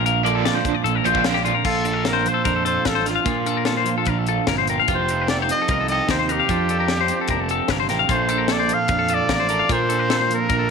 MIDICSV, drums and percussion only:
0, 0, Header, 1, 2, 480
1, 0, Start_track
1, 0, Key_signature, -2, "major"
1, 0, Tempo, 401606
1, 63, Time_signature, 4, 2, 24, 8
1, 12792, End_track
2, 0, Start_track
2, 0, Title_t, "Drums"
2, 73, Note_on_c, 9, 42, 74
2, 192, Note_off_c, 9, 42, 0
2, 313, Note_on_c, 9, 42, 53
2, 432, Note_off_c, 9, 42, 0
2, 544, Note_on_c, 9, 38, 94
2, 544, Note_on_c, 9, 42, 67
2, 664, Note_off_c, 9, 38, 0
2, 664, Note_off_c, 9, 42, 0
2, 777, Note_on_c, 9, 36, 89
2, 784, Note_on_c, 9, 42, 59
2, 896, Note_off_c, 9, 36, 0
2, 904, Note_off_c, 9, 42, 0
2, 1024, Note_on_c, 9, 42, 71
2, 1144, Note_off_c, 9, 42, 0
2, 1260, Note_on_c, 9, 42, 52
2, 1372, Note_on_c, 9, 36, 80
2, 1380, Note_off_c, 9, 42, 0
2, 1488, Note_on_c, 9, 38, 100
2, 1488, Note_on_c, 9, 42, 73
2, 1492, Note_off_c, 9, 36, 0
2, 1607, Note_off_c, 9, 38, 0
2, 1607, Note_off_c, 9, 42, 0
2, 1614, Note_on_c, 9, 38, 31
2, 1733, Note_off_c, 9, 38, 0
2, 1739, Note_on_c, 9, 42, 59
2, 1859, Note_off_c, 9, 42, 0
2, 1969, Note_on_c, 9, 36, 87
2, 1974, Note_on_c, 9, 49, 86
2, 2089, Note_off_c, 9, 36, 0
2, 2093, Note_off_c, 9, 49, 0
2, 2212, Note_on_c, 9, 42, 57
2, 2332, Note_off_c, 9, 42, 0
2, 2450, Note_on_c, 9, 38, 86
2, 2450, Note_on_c, 9, 42, 73
2, 2570, Note_off_c, 9, 38, 0
2, 2570, Note_off_c, 9, 42, 0
2, 2699, Note_on_c, 9, 42, 57
2, 2819, Note_off_c, 9, 42, 0
2, 2932, Note_on_c, 9, 36, 99
2, 2939, Note_on_c, 9, 42, 72
2, 3052, Note_off_c, 9, 36, 0
2, 3059, Note_off_c, 9, 42, 0
2, 3176, Note_on_c, 9, 42, 55
2, 3295, Note_off_c, 9, 42, 0
2, 3410, Note_on_c, 9, 38, 96
2, 3410, Note_on_c, 9, 42, 76
2, 3412, Note_on_c, 9, 36, 64
2, 3529, Note_off_c, 9, 38, 0
2, 3529, Note_off_c, 9, 42, 0
2, 3531, Note_off_c, 9, 36, 0
2, 3659, Note_on_c, 9, 38, 31
2, 3659, Note_on_c, 9, 42, 56
2, 3778, Note_off_c, 9, 38, 0
2, 3778, Note_off_c, 9, 42, 0
2, 3892, Note_on_c, 9, 42, 72
2, 3893, Note_on_c, 9, 36, 102
2, 4012, Note_off_c, 9, 42, 0
2, 4013, Note_off_c, 9, 36, 0
2, 4140, Note_on_c, 9, 42, 50
2, 4259, Note_off_c, 9, 42, 0
2, 4365, Note_on_c, 9, 38, 88
2, 4365, Note_on_c, 9, 42, 68
2, 4484, Note_off_c, 9, 38, 0
2, 4484, Note_off_c, 9, 42, 0
2, 4610, Note_on_c, 9, 42, 54
2, 4729, Note_off_c, 9, 42, 0
2, 4846, Note_on_c, 9, 42, 64
2, 4860, Note_on_c, 9, 36, 92
2, 4966, Note_off_c, 9, 42, 0
2, 4979, Note_off_c, 9, 36, 0
2, 5098, Note_on_c, 9, 42, 54
2, 5217, Note_off_c, 9, 42, 0
2, 5342, Note_on_c, 9, 38, 100
2, 5342, Note_on_c, 9, 42, 70
2, 5347, Note_on_c, 9, 36, 65
2, 5462, Note_off_c, 9, 38, 0
2, 5462, Note_off_c, 9, 42, 0
2, 5466, Note_off_c, 9, 36, 0
2, 5586, Note_on_c, 9, 42, 60
2, 5706, Note_off_c, 9, 42, 0
2, 5831, Note_on_c, 9, 42, 75
2, 5835, Note_on_c, 9, 36, 98
2, 5950, Note_off_c, 9, 42, 0
2, 5955, Note_off_c, 9, 36, 0
2, 6077, Note_on_c, 9, 42, 57
2, 6197, Note_off_c, 9, 42, 0
2, 6315, Note_on_c, 9, 38, 91
2, 6315, Note_on_c, 9, 42, 68
2, 6434, Note_off_c, 9, 38, 0
2, 6434, Note_off_c, 9, 42, 0
2, 6563, Note_on_c, 9, 42, 65
2, 6683, Note_off_c, 9, 42, 0
2, 6792, Note_on_c, 9, 42, 72
2, 6798, Note_on_c, 9, 36, 101
2, 6911, Note_off_c, 9, 42, 0
2, 6917, Note_off_c, 9, 36, 0
2, 7032, Note_on_c, 9, 42, 53
2, 7151, Note_off_c, 9, 42, 0
2, 7274, Note_on_c, 9, 36, 66
2, 7275, Note_on_c, 9, 38, 87
2, 7275, Note_on_c, 9, 42, 77
2, 7393, Note_off_c, 9, 36, 0
2, 7394, Note_off_c, 9, 38, 0
2, 7394, Note_off_c, 9, 42, 0
2, 7519, Note_on_c, 9, 42, 57
2, 7638, Note_off_c, 9, 42, 0
2, 7756, Note_on_c, 9, 36, 91
2, 7760, Note_on_c, 9, 42, 78
2, 7876, Note_off_c, 9, 36, 0
2, 7880, Note_off_c, 9, 42, 0
2, 7995, Note_on_c, 9, 42, 51
2, 8115, Note_off_c, 9, 42, 0
2, 8228, Note_on_c, 9, 38, 82
2, 8228, Note_on_c, 9, 42, 64
2, 8348, Note_off_c, 9, 38, 0
2, 8348, Note_off_c, 9, 42, 0
2, 8465, Note_on_c, 9, 42, 52
2, 8585, Note_off_c, 9, 42, 0
2, 8696, Note_on_c, 9, 42, 71
2, 8707, Note_on_c, 9, 36, 91
2, 8816, Note_off_c, 9, 42, 0
2, 8827, Note_off_c, 9, 36, 0
2, 8951, Note_on_c, 9, 42, 52
2, 9070, Note_off_c, 9, 42, 0
2, 9184, Note_on_c, 9, 38, 99
2, 9184, Note_on_c, 9, 42, 68
2, 9188, Note_on_c, 9, 36, 71
2, 9303, Note_off_c, 9, 38, 0
2, 9303, Note_off_c, 9, 42, 0
2, 9307, Note_off_c, 9, 36, 0
2, 9428, Note_on_c, 9, 38, 32
2, 9428, Note_on_c, 9, 42, 52
2, 9548, Note_off_c, 9, 38, 0
2, 9548, Note_off_c, 9, 42, 0
2, 9669, Note_on_c, 9, 36, 98
2, 9670, Note_on_c, 9, 42, 81
2, 9789, Note_off_c, 9, 36, 0
2, 9790, Note_off_c, 9, 42, 0
2, 9904, Note_on_c, 9, 42, 57
2, 10023, Note_off_c, 9, 42, 0
2, 10136, Note_on_c, 9, 38, 93
2, 10136, Note_on_c, 9, 42, 71
2, 10255, Note_off_c, 9, 38, 0
2, 10255, Note_off_c, 9, 42, 0
2, 10386, Note_on_c, 9, 42, 66
2, 10506, Note_off_c, 9, 42, 0
2, 10615, Note_on_c, 9, 42, 74
2, 10624, Note_on_c, 9, 36, 99
2, 10734, Note_off_c, 9, 42, 0
2, 10744, Note_off_c, 9, 36, 0
2, 10858, Note_on_c, 9, 42, 62
2, 10977, Note_off_c, 9, 42, 0
2, 11104, Note_on_c, 9, 36, 67
2, 11106, Note_on_c, 9, 38, 95
2, 11106, Note_on_c, 9, 42, 79
2, 11224, Note_off_c, 9, 36, 0
2, 11225, Note_off_c, 9, 38, 0
2, 11225, Note_off_c, 9, 42, 0
2, 11341, Note_on_c, 9, 42, 63
2, 11460, Note_off_c, 9, 42, 0
2, 11586, Note_on_c, 9, 36, 107
2, 11591, Note_on_c, 9, 42, 79
2, 11706, Note_off_c, 9, 36, 0
2, 11710, Note_off_c, 9, 42, 0
2, 11830, Note_on_c, 9, 42, 58
2, 11950, Note_off_c, 9, 42, 0
2, 12072, Note_on_c, 9, 38, 97
2, 12072, Note_on_c, 9, 42, 64
2, 12192, Note_off_c, 9, 38, 0
2, 12192, Note_off_c, 9, 42, 0
2, 12319, Note_on_c, 9, 42, 60
2, 12439, Note_off_c, 9, 42, 0
2, 12546, Note_on_c, 9, 36, 105
2, 12546, Note_on_c, 9, 42, 73
2, 12666, Note_off_c, 9, 36, 0
2, 12666, Note_off_c, 9, 42, 0
2, 12792, End_track
0, 0, End_of_file